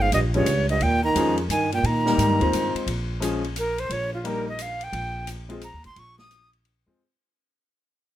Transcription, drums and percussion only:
0.12 hi-hat pedal, ride
0.34 ride
0.46 hi-hat pedal, ride
0.69 ride
0.81 ride
1.16 hi-hat pedal, ride
1.38 ride
1.50 hi-hat pedal, ride
1.72 ride
1.84 ride
2.06 snare
2.19 hi-hat pedal, ride
2.41 ride
2.53 hi-hat pedal, ride
2.76 ride
2.87 ride
3.22 hi-hat pedal, ride
3.44 ride
3.56 hi-hat pedal, ride
3.78 ride
3.90 ride
4.25 ride
4.59 hi-hat pedal, ride
4.81 ride
4.93 ride
5.27 hi-hat pedal, ride
5.50 ride
5.61 hi-hat pedal, ride
5.84 ride
5.96 ride
6.19 snare
6.31 hi-hat pedal, ride
6.53 ride
6.65 ride

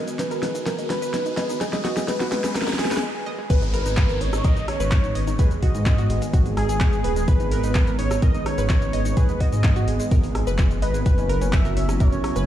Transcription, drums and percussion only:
0.08 closed hi-hat, cabasa
0.19 snare, closed hi-hat, cabasa
0.31 closed hi-hat, cabasa
0.43 snare, open hi-hat
0.55 closed hi-hat, cabasa
0.66 snare, closed hi-hat, cabasa
0.79 closed hi-hat, cabasa
0.90 snare, open hi-hat
1.02 closed hi-hat, cabasa
1.14 snare, closed hi-hat, cabasa
1.26 closed hi-hat, cabasa
1.37 snare, open hi-hat
1.49 closed hi-hat, cabasa
1.61 snare, closed hi-hat, cabasa
1.73 snare, closed hi-hat, cabasa
1.85 snare, open hi-hat
1.97 snare, closed hi-hat, cabasa
2.08 snare, closed hi-hat, cabasa
2.20 snare, closed hi-hat, cabasa
2.32 snare, open hi-hat
2.44 snare, closed hi-hat, cabasa
2.56 snare, closed hi-hat, cabasa
2.62 snare
2.68 snare, open hi-hat, cabasa
2.73 snare
2.79 snare, open hi-hat
2.85 snare
2.91 snare, closed hi-hat, cabasa
2.97 snare
3.50 kick, closed hi-hat, cabasa
3.62 closed hi-hat, cabasa
3.74 open hi-hat
3.86 closed hi-hat, cabasa
3.97 kick, clap, closed hi-hat, cabasa
4.09 closed hi-hat, cabasa
4.21 open hi-hat
4.33 cross-stick, closed hi-hat, cabasa
4.44 kick, closed hi-hat, cabasa
4.57 closed hi-hat, cabasa
4.68 cross-stick, open hi-hat
4.80 closed hi-hat, cabasa
4.91 kick, clap, closed hi-hat, cabasa
5.04 closed hi-hat, cabasa
5.15 open hi-hat
5.27 closed hi-hat, cabasa
5.39 kick, closed hi-hat, cabasa
5.51 closed hi-hat, cabasa
5.63 kick, open hi-hat
5.75 closed hi-hat, cabasa
5.86 kick, clap, closed hi-hat, cabasa
5.98 closed hi-hat, cabasa
6.10 open hi-hat
6.22 closed hi-hat, cabasa
6.33 kick, closed hi-hat, cabasa
6.46 open hi-hat, cabasa
6.57 cross-stick, open hi-hat
6.69 closed hi-hat, cabasa
6.80 kick, clap, closed hi-hat, cabasa
6.93 closed hi-hat, cabasa
7.04 open hi-hat
7.16 closed hi-hat, cabasa
7.28 kick, closed hi-hat, cabasa
7.40 closed hi-hat, cabasa
7.51 open hi-hat
7.64 closed hi-hat, cabasa
7.75 kick, clap, closed hi-hat, cabasa
7.87 closed hi-hat, cabasa
7.99 open hi-hat
8.11 cross-stick, closed hi-hat, cabasa
8.22 kick, closed hi-hat, cabasa
8.34 closed hi-hat, cabasa
8.46 cross-stick, open hi-hat
8.58 closed hi-hat, cabasa
8.69 kick, clap, closed hi-hat, cabasa
8.82 closed hi-hat, cabasa
8.93 open hi-hat
9.05 closed hi-hat, cabasa
9.17 kick, closed hi-hat, cabasa
9.29 closed hi-hat, cabasa
9.40 kick, open hi-hat
9.53 closed hi-hat, cabasa
9.64 kick, clap, closed hi-hat, cabasa
9.76 closed hi-hat, cabasa
9.88 open hi-hat
10.00 closed hi-hat, cabasa
10.11 kick, closed hi-hat, cabasa
10.23 open hi-hat, cabasa
10.35 cross-stick, open hi-hat
10.47 closed hi-hat, cabasa
10.58 kick, clap, closed hi-hat, cabasa
10.71 closed hi-hat, cabasa
10.82 open hi-hat
10.94 closed hi-hat, cabasa
11.06 kick, closed hi-hat, cabasa
11.18 closed hi-hat, cabasa
11.29 open hi-hat
11.42 closed hi-hat, cabasa
11.53 kick, clap, closed hi-hat, cabasa
11.65 closed hi-hat, cabasa
11.77 open hi-hat
11.89 cross-stick, closed hi-hat, cabasa
12.00 kick, closed hi-hat, cabasa
12.12 closed hi-hat, cabasa
12.24 cross-stick, open hi-hat
12.36 closed hi-hat, cabasa

